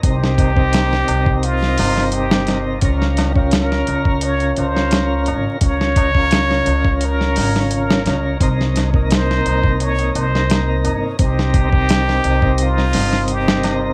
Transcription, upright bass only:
X:1
M:4/4
L:1/8
Q:1/4=86
K:Cphr
V:1 name="Upright bass" clef=bass
C,,3 C,,2 G,,,3 | D,,3 D,,2 D,,2 A,,, | D,,3 D,,2 A,,,2 D,, | C,,3 C,,2 C,,2 G,,, |
C,,3 C,,2 G,,,3 |]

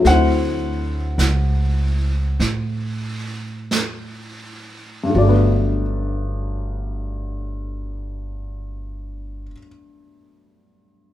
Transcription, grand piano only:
X:1
M:4/4
L:1/8
Q:"Swing" 1/4=40
K:G
V:1 name="Grand piano"
[cf]6 z2 | d8 |]
V:2 name="Grand piano"
[F,A,CE]8 | [G,,D,F,A,B,]8 |]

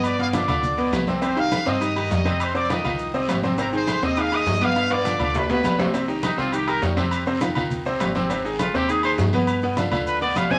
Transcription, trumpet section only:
X:1
M:4/4
L:1/8
Q:1/4=204
K:Cm
V:1 name="Trumpet section"
[dd'] f [dd']4 z2 | [cc'] f2 [ee']4- [ee'] | [cc'] [dd'] [ee']4 z2 | [Bb] [cc']2 [ee'] f [ee']2 f- |
f [dd']2 [dd'] [=B=b] [Bb]2 z | z8 | z8 | z8 |
z8 |]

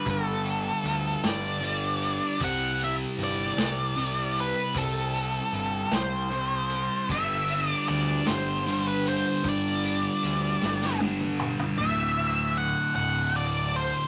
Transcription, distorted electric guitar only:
X:1
M:6/8
L:1/8
Q:3/8=51
K:G
V:1 name="Distorted electric guitar" clef=bass
[G,,D,G,]4 [G,,D,G,]2 | [C,G,C]4 [C,G,C]2 | [C,G,C]4 [C,G,C]2 | [G,,D,G,]4 [G,,D,G,]2 |
[G,,D,G,]4 [G,,D,G,]2 | [D,,A,,D,]6 |]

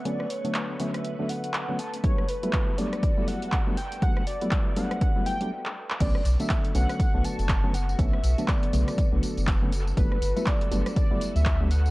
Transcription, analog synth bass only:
X:1
M:4/4
L:1/16
Q:"Swing 16ths" 1/4=121
K:Bm
V:1 name="Analog synth bass" clef=bass
z16 | z16 | z16 | B,,, z B,,, z3 B,,, z2 B,,, z F,,,4- F,,, |
B,,, z B,,, z3 B,,, z2 B,,, z F,,,4- F,,, | G,,, z G,,, z3 G,,, z2 G,,, z D,,4- D,, |]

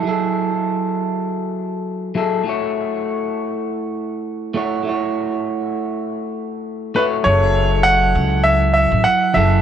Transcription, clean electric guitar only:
X:1
M:4/4
L:1/8
Q:"Swing 16ths" 1/4=100
K:F#m
V:1 name="Clean electric guitar"
[F,EGA]6- [F,EGA] [F,EGA] | [A,EFc]6- [A,EFc] [A,EFc] | [A,EFc]6- [A,EFc] [A,EFc] | [F,EGA]6- [F,EGA] [F,EGA] |]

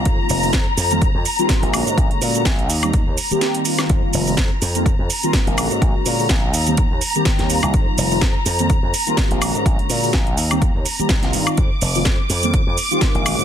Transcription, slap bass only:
X:1
M:4/4
L:1/16
Q:"Swing 16ths" 1/4=125
K:Eblyd
V:1 name="Slap bass" clef=bass
F,, z F,,,2 z2 F,,3 F,, z3 B,,,2 _A,, | B,,, z B,,2 B,,,2 E,,3 E,, z6 | F,, z F,,,2 z2 F,,3 F,, z3 B,,,2 _A,, | B,,, z B,,2 B,,,2 E,,3 E,, z3 E,,2 C,, |
F,, z F,,,2 F,, z F,,3 F,, z3 B,,,2 _A,, | B,,, z B,,2 B,,,2 E,,3 E,, z2 C,, C,, G,, z | F,, z F,,,2 F,, z F,,3 F,, z3 B,,,2 _A,, |]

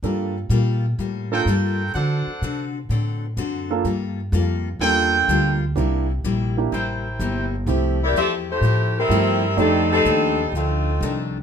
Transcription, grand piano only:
X:1
M:4/4
L:1/8
Q:"Swing" 1/4=126
K:F
V:1 name="Grand piano"
[B,DFA] z4 [B,DFA] z2 | z6 z [B,DFA] | z4 [B,DFA]3 z | [B,DEG] z2 [B,DEG] z4 |
[A,CEG] z4 z [A,CEG] z | [A,_EGd]3 z4 z |]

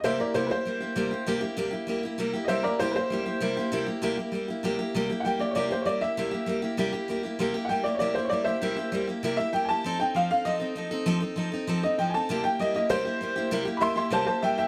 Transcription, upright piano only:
X:1
M:4/4
L:1/8
Q:1/4=196
K:Cmix
V:1 name="Upright piano"
[c_e=e] [Bd] [Ec] [=Bc]4- [Bc]- | [=Bc] z6 z | [c_e=e] [Bd] [Ec] [=Bc]4- [Bc]- | [=Bc] z6 z |
z2 [^fg] d [_d=d] c [_d=d] e- | e3 z4 z | z2 [^fg] d [_d=d] c [_d=d] [ce]- | [ce]3 z2 e g [_a=a]- |
[_a=a] g f f _e4 | z4 z _e g [_a=a]- | [_a=a] g _e e c4 | z2 [e=bc'] [ec'] [ca] [ca] [eg] [eg] |]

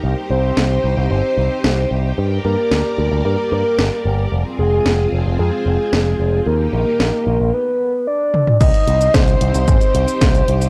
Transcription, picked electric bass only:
X:1
M:4/4
L:1/16
Q:1/4=112
K:Cm
V:1 name="Picked electric bass" clef=bass
C,, z C,, z C,, z C,, C,, G,,, z C,, z C,, z C,, z | G,, z G,, z D,, z D,, D,, G,, z G,, z G,,, z G,,, z | F,,, z F,,, z F,,, z F,,, F,,, F,, z F,,, z F,,, z F,,, z | E,, z B,,, z B,,, z B,,, B,,, z8 |
C,, z C,, z C,, z C,, C,, G,,, z C,, z C,, z C,, z |]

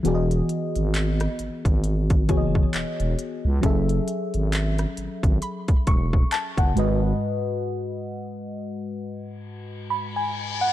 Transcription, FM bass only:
X:1
M:4/4
L:1/16
Q:"Swing 16ths" 1/4=67
K:G#phr
V:1 name="FM bass" clef=bass
E,,,2 z G,,,3 G,,, G,,,3 F,,,2 E,,, E,,, z C,, | F,,,2 z G,,,3 G,,, G,,, z E,,, E,,,2 z F,,, G,,,2 | z16 |]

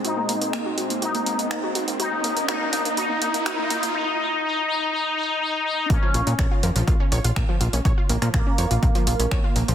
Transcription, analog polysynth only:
X:1
M:4/4
L:1/8
Q:1/4=123
K:Bbm
V:1 name="Analog polysynth"
E4 E4 | E2 E2 E2 E2 | E E E E E E E E | D4 z4 |
z2 B,6 |]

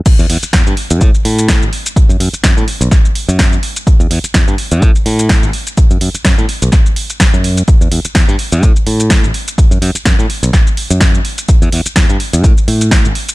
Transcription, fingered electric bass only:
X:1
M:4/4
L:1/16
Q:"Swing 16ths" 1/4=126
K:Ador
V:1 name="Fingered electric bass" clef=bass
z E,, E,, z E,, G,, z E,, A,, z A,,3 A,,, z2 | z F,, F,, z F,, A,, z B,,, z3 F,,2 z3 | z E,, E,, z E,, G,, z E,, A,, z A,,3 A,,, z2 | z F,, F,, z F,, A,, z B,,, z4 z F,,2 z |
z E,, E,, z E,, G,, z E,, A,, z A,,3 A,,, z2 | z F,, F,, z F,, A,, z B,,, z3 F,,2 z3 | z E,, E,, z E,, G,, z E,, A,, z A,,3 A,,, z2 |]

